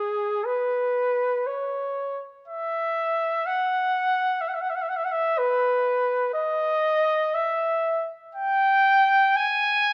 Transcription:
trumpet
Already playing: G#4
0.46 B4
1.47 C#5
2.48 E5
3.46 F#5
4.41 E5
4.48 F#5
4.54 E5
4.61 F#5
4.70 E5
4.75 F#5
4.82 E5
4.89 F#5
4.96 E5
5.05 F#5
5.12 E5
5.38 B4
6.34 D#5
7.34 E5
8.35 G5
9.36 G#5

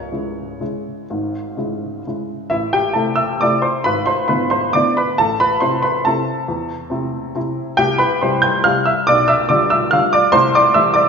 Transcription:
upright piano
Already playing: C#1 C#2 C#5
0.12 C#3 G#3 E4
0.60 C#3 G#3 E4
1.10 G#1 G#2
1.57 C#3 G#3 E4
2.07 C#3 G#3 E4
2.50 A1 E4 E5
2.73 G4 G5
2.93 C3 A3 E4 A4 A5
3.16 E5 E6
3.41 C3 A3 E4 D5 D6
3.62 C5 C6
3.84 G#1 B4 B5
4.06 C5 C6
4.28 D3 B3 E4 B4 B5
4.50 C5 C6
4.73 D3 B3 E4 D5 D6
4.97 B4 B5
5.18 A1 A4 A5
5.40 B4 B5
5.60 C3 C4 E4 C5 C6
5.83 B4 B5
6.05 C3 C4 E4 A4 A5
6.48 E2
6.90 C3 C4 E4
7.35 C3 C4 E4
7.77 C2 G4 G5
7.98 B4 B5
8.21 C3 G3 E4 C5 C6
8.42 G5 G6
8.64 C3 G3 E4 F5 F6
8.86 E5 E6
9.07 B1 D5 D6
9.28 E5 E6
9.49 D3 G3 F4 D5 D6
9.70 E5 E6
9.91 D3 G3 F4 F5 F6
10.13 D5 D6
10.32 C2 C5 C6
10.55 D5 D6
10.74 E3 G3 E4 E5 E6
10.94 D5 D6

